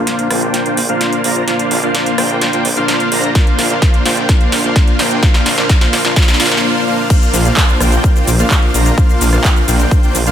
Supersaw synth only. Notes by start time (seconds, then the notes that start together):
Already playing: A#3 D4 F4 C5 F5
0.30 A#3 D4 F4 C5 G5
0.65 A#3 D4 F4 C5 G5
0.89 A#3 D4 F4 C5 F5
1.24 A#3 D4 F4 C5 A#5
1.48 A#3 D4 F4 C5 F5
1.83 A#3 D4 F4 C5 F5
2.18 A#3 D4 F4 C5 G5
2.53 A#3 D4 F4 C5 G5
2.77 A#3 D4 F4 C5 F5
3.12 A#3 D4 F4 C5 A#5
3.35 A#3 D4 F4 C5 F5
3.70 A#3 D4 F4 C5 F5
4.05 A#3 D4 F4 C5 G5
4.29 A#3 D4 F4 C5 F5
4.64 A#3 D4 F4 C5 F5
4.99 A#3 D4 F4 C5 G5
5.23 A#3 D4 F4 C5 F5
5.58 A#3 D4 F4 C5 F5
5.69 A#3 D4 F4 C5 F5
6.05 A#3 D4 F4 C5 F5
6.16 A#3 D4 F4 C5 F5
6.40 A#3 D4 F4 C5 F5
6.63 A#3 D4 F4 C5 F5
6.87 A#3 D4 F4 C5 F5
7.10 A#3 D4 F4 C5 F5
7.45 A#3 D4 F4 C5 F5
7.80 A#3 D4 F4 C5 G5
8.16 A#3 D4 F4 C5 G5
8.39 A#3 D4 F4 C5 F5
8.74 A#3 D4 F4 C5 A#5
8.98 A#3 D4 F4 C5 F5
9.33 A#3 D4 F4 C5 F5
9.68 A#3 D4 F4 C5 G5
10.03 A#3 D4 F4 C5 G5
10.27 A#3 D4 F4 C5 F5